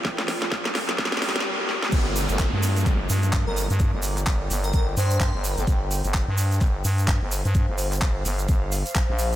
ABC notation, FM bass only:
X:1
M:4/4
L:1/16
Q:"Swing 16ths" 1/4=128
K:Gm
V:1 name="FM bass" clef=bass
z16 | G,,,3 G,,,2 G,,3 G,,,2 G,,3 G,,,2 G,,- | G,, G,,,3 G,,,2 G,,,2 G,,,2 G,,3 G,,,2 G,,, | G,,,3 G,,,2 G,,3 G,,,2 G,,3 G,,,2 G,,- |
G,, G,,,3 G,,,2 G,,,2 G,,,3 z2 B,,,3 |]